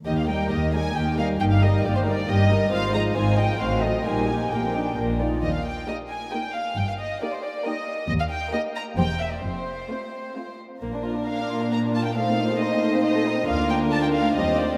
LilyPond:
<<
  \new Staff \with { instrumentName = "Violin section" } { \time 3/4 \key ees \major \tempo 4 = 135 ees''16 f''16 g''8 ees''8 aes''8 g''8 f''8 | g''16 f''16 ees''8 d''16 c''16 d''8 ees''4 | f''8 bes''8 aes''8 g''8 f''8 ees''8 | aes''4 g''4 r4 |
ees''16 f''16 g''8 ees''8 aes''8 g''8 f''8 | g''16 f''16 ees''8 d''16 c''16 d''8 ees''4 | \key bes \major ees''16 f''16 g''8 ees''8 bes''8 g''8 e''16 d''16 | c''2~ c''8 r8 |
r4 f''4 bes''8 a''16 g''16 | f''4 ees''4 ees''4 | f''8 g''8 a''16 g''16 f''8 ees''8 d''8 | }
  \new Staff \with { instrumentName = "Violin section" } { \time 3/4 \key ees \major << { g'8 bes'8 g'8 bes'8 g'8 bes'8 | g'8 bes'8 g'8 bes'8 g'8 bes'8 | c''8 ees''8 c''8 ees''8 c''8 a'8 | bes'8 g'8 bes'8 g'8 bes'8 d''8 |
r4 bes'4 bes'4 | r4 bes'4 bes'4 | \key bes \major r4 bes'4 c''4 | r4 c''4 c''4 |
bes'2. | c''2. | bes'2 c''4 | } \\ { g'8 ees'8 g'8 ees'8 g'8 ees'8 | g'8 ees'8 g'8 ees'8 g'8 ees'8 | f'8 ees'8 f'8 ees'8 fis'8 ees'8 | g'8 ees'8 g'8 ees'8 d'8 f'8 |
r4 g'8. r16 g'8. r16 | r4 g'8. r16 g'8. r16 | r4 g'8. r16 g'8. r16 | r4 f'8. r16 f'8. r16 |
bes16 d'16 f'16 d'16 bes16 d'16 f'16 d'16 bes16 d'16 f'16 d'16 | a16 c'16 ees'16 a'16 ees'16 c'16 a16 c'16 ees'16 a'16 ees'16 c'16 | f'2 g'4 | } >> }
  \new Staff \with { instrumentName = "Viola section" } { \time 3/4 \key ees \major << { bes8 g8 bes8 g8 bes8 g8 | bes8 g8 bes8 g8 bes8 g8 | c'8 aes8 c'8 aes8 c'8 a8 | ees'8 g'8 bes16 c'16 d'8 bes8 ees'8 |
r4 ees'4 ees'4 | r4 ees'4 ees'4 | \key bes \major r4 ees'4 c'4 | r4 c'4 c'4 |
d'2. | ees'2. | d'2 c'4 | } \\ { ees8 g8 ees8 g8 ees8 g8 | ees8 g8 ees8 g8 ees8 g8 | ees8 f8 ees8 f8 ees8 fis8 | g8 bes8 r2 |
r4 bes4 bes4 | r4 bes4 bes4 | r4 bes4 bes4 | r4 a4 a4 |
bes2. | a2. | bes4 a4 g8 a8 | } >> }
  \new Staff \with { instrumentName = "Cello section" } { \clef bass \time 3/4 \key ees \major ees,4 ees,4 ees,4 | g,4 g,4 g,4 | aes,4 aes,4 a,4 | bes,4 bes,4 bes,4 |
ees,4 r2 | g,4 r2 | \key bes \major ees,4 r4 e,4 | f,4 r2 |
bes,2.~ | bes,2. | d,2 ees,4 | }
  \new Staff \with { instrumentName = "Double bass section" } { \clef bass \time 3/4 \key ees \major ees,4 ees,4 ees,4 | g,,4 g,,4 g,,4 | aes,,4 aes,,4 a,,4 | bes,,4 bes,,4 bes,,4 |
ees,4 r2 | g,,4 r2 | \key bes \major ees,4 r4 e,,4 | f,,4 r2 |
bes,,4 r2 | r2. | d,4 r4 ees,4 | }
>>